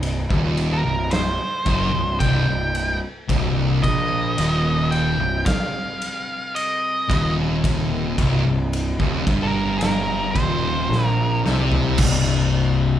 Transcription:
Already playing: C1 C2
0.03 ride
0.30 D#1 D#2, kick
0.57 ride
0.73 A#4
0.85 C1 C2
1.11 C5, snare, ride
1.66 F#1 F#2, kick, ride
1.93 C1 C2
2.19 C1 C2 G5, kick, ride
2.47 C1 C2
2.75 ride
3.28 C1 C2 C3 G3 C4, kick, ride
3.82 A#1 A#2 D#5, kick, ride
4.37 D#1 D#2, ride
4.91 G5, ride
5.18 C1 C2
5.46 F5, kick, snare, ride
6.02 ride
6.55 D#5, ride
7.08 D#1 D#2, kick, ride
7.62 F3, kick, ride
8.17 C1 C2, kick, ride
8.44 C1 C2
8.73 ride
8.99 D#1 D#2, kick
9.26 G1 G2, kick, ride
9.43 A#4
9.78 A#4, ride
9.83 snare
10.31 C5
10.36 D#1 D#2, kick, ride
10.89 A#1 A#2, snare
11.06 A#4
11.44 C2 C3, snare
11.72 floor tom
11.98 C1 C2 C3 G3 C4, kick, crash

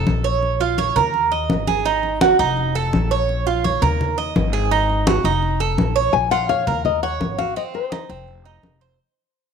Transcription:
Already playing: A4
0.07 A#1, high conga
0.24 C#5, high conga
0.43 high conga
0.60 F4, high conga
0.78 C#5, high conga
0.96 D#2 A#4, high conga, low conga
1.14 high conga
1.31 D#5, high conga
1.50 G#1, high conga
1.67 G#4, high conga
1.85 D#4, high conga
2.03 high conga
2.21 F#4, high conga
2.39 F1 D#4
2.57 high conga
2.75 A4, high conga
2.93 A#1, high conga
3.11 C#5, high conga
3.29 high conga
3.47 F4, high conga
3.64 C#5, high conga
3.82 D#2 A#4, high conga, low conga
4.01 high conga, low conga
4.18 D#5, high conga
4.36 G#1, high conga
4.53 G#4
4.71 D#4, high conga
4.89 high conga
5.07 F#4, high conga
5.24 F1 D#4
5.42 high conga
5.60 A4, high conga
5.78 A#1, high conga
5.96 C#5, high conga
6.13 A#1 G#5, high conga
6.31 F4 F#5, high conga
6.49 C#5 F5, high conga
6.67 D#2 A#4, high conga, low conga
6.85 D#5, high conga, low conga
7.03 C#5 F#5, high conga
7.20 G#1, high conga
7.38 F#4 F5, high conga
7.56 C4 D#5, high conga
7.74 C5, high conga
7.92 D#4, high conga
8.09 F1 C4
8.28 high conga
8.45 D#4, high conga
8.63 F1, high conga
8.81 C5, high conga

